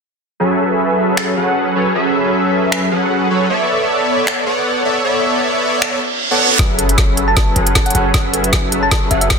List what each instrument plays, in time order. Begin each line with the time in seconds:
0.40 supersaw synth F#3 C#4 G#4 A4 B4 E5
1.17 finger snap
1.37 supersaw synth F#3 C#4 G#4 A4 B4 F#5
1.75 supersaw synth F#3 C#4 G#4 A4 B4 C#5
1.95 supersaw synth F#3 C#4 G#4 A4 B4 E5
2.72 finger snap
2.91 supersaw synth F#3 C#4 G#4 A4 B4 F#5
3.30 supersaw synth F#3 C#4 G#4 A4 B4 C#5
3.50 supersaw synth B3 A4 C#5 D5 E5
4.27 finger snap
4.46 supersaw synth B3 A4 C#5 D5 F#5
4.85 supersaw synth B3 A4 C#5 D5 E5
5.04 supersaw synth B3 A4 C#5 D5 E5
5.82 finger snap, reverse cymbal
6.31 supersaw synth B3 A4 C#5 D5 F#5
6.59 808-style bass F#1, supersaw synth F#3 C#4 G#4 A4, kick, snare, closed hi-hat, riser
6.79 closed hi-hat
6.89 closed hi-hat
6.98 kick, snare, closed hi-hat
7.17 closed hi-hat
7.28 synth pluck A5
7.37 kick, snare, closed hi-hat
7.56 808-style bass F#1, supersaw synth F#3 C#4 G#4 A4 B4 F#5, closed hi-hat
7.67 closed hi-hat
7.75 synth pluck A5, kick, snare, closed hi-hat
7.86 synth pluck F#5, closed hi-hat
7.90 closed hi-hat
7.95 808-style bass F#1, supersaw synth F#3 C#4 G#4 A4 B4 C#5, synth pluck F#5, closed hi-hat
8.14 808-style bass F#1, supersaw synth F#3, kick, snare, closed hi-hat
8.34 closed hi-hat
8.44 closed hi-hat
8.53 kick, snare, closed hi-hat
8.72 closed hi-hat
8.83 synth pluck A5
8.91 kick, snare, closed hi-hat
9.11 808-style bass F#1, supersaw synth F#3 C#4 G#4 A4 B4 F#5, synth pluck E5, closed hi-hat
9.21 synth pluck E5, closed hi-hat
9.30 kick, snare, closed hi-hat